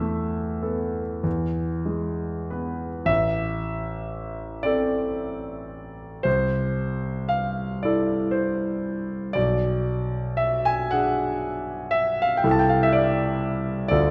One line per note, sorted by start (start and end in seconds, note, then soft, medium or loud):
0.00 1.20 E2 soft
0.00 1.00 A3 soft
0.00 1.23 E5 medium
0.63 1.21 B3 soft
0.63 1.21 A4 soft
1.23 3.04 E2 soft
1.85 2.86 G#3 soft
2.50 3.05 B3 soft
2.50 3.05 B4 soft
3.05 6.20 A1 soft
3.05 4.65 E5 medium
4.63 6.21 C4 soft
4.63 6.21 A4 soft
4.63 6.24 D5 medium
6.23 9.31 C2 soft
6.23 7.31 C5 medium
7.29 7.83 F5 medium
7.83 9.31 E4 soft
7.83 9.32 A4 soft
7.83 8.34 D5 medium
8.31 9.33 C5 medium
9.33 12.40 B1 soft
9.33 10.39 D5 medium
10.37 10.65 E5 medium
10.65 10.92 G#5 medium
10.91 12.40 D4 soft
10.91 12.41 G#4 soft
10.91 11.93 F#5 medium
11.91 12.22 E5 medium
12.22 12.39 F5 medium
12.37 12.50 G5 medium
12.44 13.86 C2 medium
12.44 13.86 E4 soft
12.44 13.86 A4 soft
12.51 12.61 A5 medium
12.59 12.69 G5 medium
12.69 12.81 F5 medium
12.83 12.94 E5 medium
12.93 13.87 D5 medium
13.88 14.11 D2 medium
13.88 14.11 F4 soft
13.88 14.11 A4 soft
13.88 14.11 D5 medium